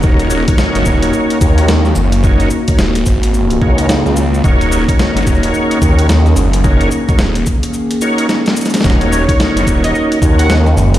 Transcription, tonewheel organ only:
X:1
M:4/4
L:1/16
Q:"Swing 16ths" 1/4=109
K:Ebm
V:1 name="Tonewheel organ"
[EGBd]3 [EGBd]6- [EGBd] [EGBd]2 z4 | [EGBd]2 z [EGBd] z6 [EGBd]2 z4 | [EGBd]3 [EGBd]6- [EGBd] [EGBd]2 z4 | [EGBd]2 z [EGBd] z6 [EGBd]2 z4 |
[EGBd]3 [EGBd]6- [EGBd] [EGBd]2 z4 |]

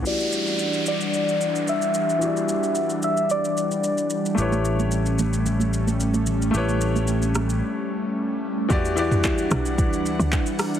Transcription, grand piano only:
X:1
M:4/4
L:1/8
Q:1/4=111
K:Edor
V:1 name="Grand piano"
[E,EFGd]8 | [E,EFGd]8 | [A,EGBc]8 | [A,EGBc]8 |
[E,EFGd] [E,EFGd]3 z4 |]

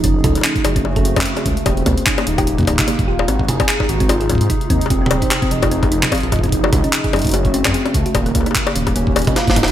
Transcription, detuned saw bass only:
X:1
M:4/4
L:1/16
Q:"Swing 16ths" 1/4=148
K:Gblyd
V:1 name="Detuned saw bass" clef=bass
G,,,2 D,, z3 G,,, G,,,4 G,, z2 D,, z | E,,,2 D,, z3 E,,, E,,,3 E,,, z2 =G,,, E,,,2 | A,,,2 G,,, z3 A,,, A,,,4 A,, z2 E,, z | F,,,2 E,,, z3 F,,, F,,,3 F,,, z2 B,,, F,,,2 |
G,,,2 D,, z3 G,,, G,,,4 G,, z2 D,, z | E,,,2 D,, z3 E,,, E,,,3 E,,, z2 =G,,, E,,,2 |]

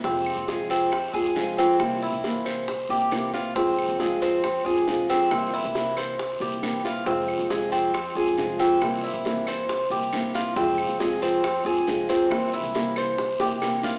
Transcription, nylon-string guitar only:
X:1
M:4/4
L:1/8
Q:1/4=137
K:Fm
V:1 name="Nylon-string guitar"
[C,F,A,CF]2 [C,F,A,CF]2 z [A,CF] [C,F,A,CF] [A,CF] | [C,=E,B,C=E]2 [C,E,B,CE]2 z [B,CE] [C,E,B,CE] [B,CE] | [C,F,A,CF]2 [C,F,A,CF]2 z [A,CF] [C,F,A,CF] [A,CF] | [C,=E,B,C=E]2 [C,E,B,CE]2 z [B,CE] [C,E,B,CE] [B,CE] |
[C,F,A,CF]2 [C,F,A,CF]2 z [A,CF] [C,F,A,CF] [A,CF] | [C,=E,B,C=E]2 [C,E,B,CE]2 z [B,CE] [C,E,B,CE] [B,CE] | [C,F,A,CF]2 [C,F,A,CF]2 z [A,CF] [C,F,A,CF] [A,CF] | [C,=E,B,C=E]2 [C,E,B,CE]2 z [B,CE] [C,E,B,CE] [B,CE] |]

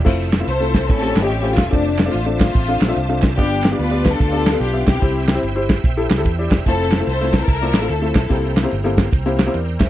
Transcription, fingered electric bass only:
X:1
M:4/4
L:1/8
Q:"Swing" 1/4=146
K:F
V:1 name="Fingered electric bass" clef=bass
F,,,2 C,,2 A,,, G,,, A,,, E,,, | F,,,2 A,,,2 A,,, B,,, C,,2 | G,,,2 D,,2 D,,2 =B,,, B,,, | C,,2 G,,,2 B,,, C,, E,, E,,, |
F,,,2 C,,2 C,, A,,, D,, =B,,, | C,,2 G,,,2 C,,2 E,, E,,, |]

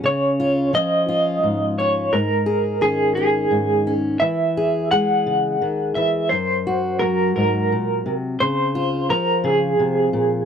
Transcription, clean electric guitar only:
X:1
M:6/8
L:1/8
Q:3/8=57
K:Db
V:1 name="Clean electric guitar"
d2 e3 d | B2 A A2 z | =e2 g3 e | c2 B B2 z |
c2 B A3 |]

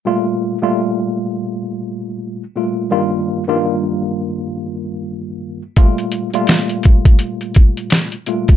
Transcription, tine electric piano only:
X:1
M:4/4
L:1/16
Q:"Swing 16ths" 1/4=84
K:Gm
V:1 name="Tine electric piano" clef=bass
[B,,G,A,F]3 [B,,G,A,F]8- [B,,G,A,F]2 z [B,,G,A,F]2 | [G,,E,G,B,F]3 [G,,E,G,B,F]12 z | [B,,G,A,F]3 [B,,G,A,F]8- [B,,G,A,F]2 z [B,,G,A,F]2 |]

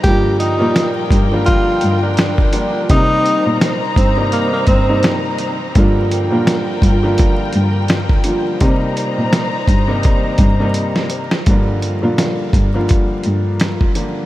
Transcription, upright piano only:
X:1
M:4/4
L:1/16
Q:"Swing 16ths" 1/4=84
K:Gm
V:1 name="Upright piano" clef=bass
[D,F,G,B,F]3 [B,,F,G,B,F]4 [D,F,G,B,F]6 z [D,F,G,B,F]2 | [C,E,G,B,E]6 z [C,E,G,B,E]4 [C,E,G,B,E]4 z | [D,F,G,B,F]3 [D,F,G,B,F]4 [D,F,G,B,F]6 z [D,F,G,B,F]2 | [C,E,G,B,E]6 z [C,E,G,B,E]4 [C,E,G,B,E]4 z |
[D,F,G,B,F]3 [D,F,G,B,F]4 [D,F,G,B,F]6 z [D,F,G,B,F]2 |]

